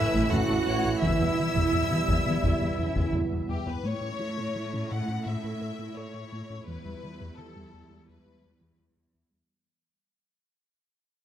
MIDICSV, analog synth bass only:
0, 0, Header, 1, 2, 480
1, 0, Start_track
1, 0, Tempo, 705882
1, 695, Time_signature, 4, 2, 24, 8
1, 7647, End_track
2, 0, Start_track
2, 0, Title_t, "Analog synth bass"
2, 0, Program_c, 0, 38
2, 106, Note_on_c, 0, 45, 92
2, 175, Note_off_c, 0, 45, 0
2, 227, Note_on_c, 0, 45, 61
2, 295, Note_off_c, 0, 45, 0
2, 339, Note_on_c, 0, 45, 65
2, 410, Note_off_c, 0, 45, 0
2, 459, Note_on_c, 0, 45, 84
2, 530, Note_off_c, 0, 45, 0
2, 580, Note_on_c, 0, 45, 57
2, 650, Note_off_c, 0, 45, 0
2, 703, Note_on_c, 0, 40, 96
2, 773, Note_off_c, 0, 40, 0
2, 818, Note_on_c, 0, 40, 54
2, 889, Note_off_c, 0, 40, 0
2, 946, Note_on_c, 0, 52, 62
2, 1015, Note_off_c, 0, 52, 0
2, 1061, Note_on_c, 0, 40, 77
2, 1131, Note_off_c, 0, 40, 0
2, 1184, Note_on_c, 0, 40, 51
2, 1253, Note_off_c, 0, 40, 0
2, 1301, Note_on_c, 0, 52, 58
2, 1371, Note_off_c, 0, 52, 0
2, 1420, Note_on_c, 0, 40, 75
2, 1490, Note_off_c, 0, 40, 0
2, 1543, Note_on_c, 0, 52, 57
2, 1612, Note_off_c, 0, 52, 0
2, 1655, Note_on_c, 0, 40, 81
2, 1727, Note_off_c, 0, 40, 0
2, 1779, Note_on_c, 0, 40, 58
2, 1850, Note_off_c, 0, 40, 0
2, 1896, Note_on_c, 0, 40, 51
2, 1967, Note_off_c, 0, 40, 0
2, 2015, Note_on_c, 0, 40, 80
2, 2087, Note_off_c, 0, 40, 0
2, 2136, Note_on_c, 0, 40, 60
2, 2208, Note_off_c, 0, 40, 0
2, 2258, Note_on_c, 0, 40, 59
2, 2329, Note_off_c, 0, 40, 0
2, 2372, Note_on_c, 0, 40, 85
2, 2445, Note_off_c, 0, 40, 0
2, 2492, Note_on_c, 0, 40, 61
2, 2565, Note_off_c, 0, 40, 0
2, 2608, Note_on_c, 0, 45, 90
2, 2682, Note_off_c, 0, 45, 0
2, 2728, Note_on_c, 0, 45, 45
2, 2802, Note_off_c, 0, 45, 0
2, 2851, Note_on_c, 0, 57, 51
2, 2924, Note_off_c, 0, 57, 0
2, 2975, Note_on_c, 0, 45, 69
2, 3047, Note_off_c, 0, 45, 0
2, 3096, Note_on_c, 0, 57, 48
2, 3168, Note_off_c, 0, 57, 0
2, 3218, Note_on_c, 0, 45, 46
2, 3289, Note_off_c, 0, 45, 0
2, 3343, Note_on_c, 0, 45, 76
2, 3413, Note_off_c, 0, 45, 0
2, 3458, Note_on_c, 0, 45, 48
2, 3529, Note_off_c, 0, 45, 0
2, 3578, Note_on_c, 0, 45, 76
2, 3649, Note_off_c, 0, 45, 0
2, 3698, Note_on_c, 0, 45, 51
2, 3769, Note_off_c, 0, 45, 0
2, 3820, Note_on_c, 0, 45, 53
2, 3891, Note_off_c, 0, 45, 0
2, 3937, Note_on_c, 0, 45, 74
2, 4008, Note_off_c, 0, 45, 0
2, 4057, Note_on_c, 0, 45, 53
2, 4128, Note_off_c, 0, 45, 0
2, 4175, Note_on_c, 0, 45, 51
2, 4247, Note_off_c, 0, 45, 0
2, 4300, Note_on_c, 0, 45, 71
2, 4371, Note_off_c, 0, 45, 0
2, 4420, Note_on_c, 0, 45, 53
2, 4491, Note_off_c, 0, 45, 0
2, 4540, Note_on_c, 0, 40, 77
2, 4610, Note_off_c, 0, 40, 0
2, 4660, Note_on_c, 0, 40, 48
2, 4730, Note_off_c, 0, 40, 0
2, 4782, Note_on_c, 0, 52, 51
2, 4852, Note_off_c, 0, 52, 0
2, 4899, Note_on_c, 0, 40, 61
2, 4970, Note_off_c, 0, 40, 0
2, 5017, Note_on_c, 0, 52, 46
2, 5088, Note_off_c, 0, 52, 0
2, 5138, Note_on_c, 0, 40, 53
2, 5209, Note_off_c, 0, 40, 0
2, 5260, Note_on_c, 0, 40, 65
2, 5330, Note_off_c, 0, 40, 0
2, 5375, Note_on_c, 0, 40, 47
2, 5447, Note_off_c, 0, 40, 0
2, 5498, Note_on_c, 0, 40, 73
2, 5569, Note_off_c, 0, 40, 0
2, 5621, Note_on_c, 0, 40, 46
2, 5691, Note_off_c, 0, 40, 0
2, 5748, Note_on_c, 0, 40, 44
2, 5816, Note_off_c, 0, 40, 0
2, 5862, Note_on_c, 0, 40, 65
2, 5932, Note_off_c, 0, 40, 0
2, 5980, Note_on_c, 0, 40, 50
2, 6050, Note_off_c, 0, 40, 0
2, 6099, Note_on_c, 0, 40, 46
2, 6170, Note_off_c, 0, 40, 0
2, 6220, Note_on_c, 0, 40, 59
2, 6290, Note_off_c, 0, 40, 0
2, 7647, End_track
0, 0, End_of_file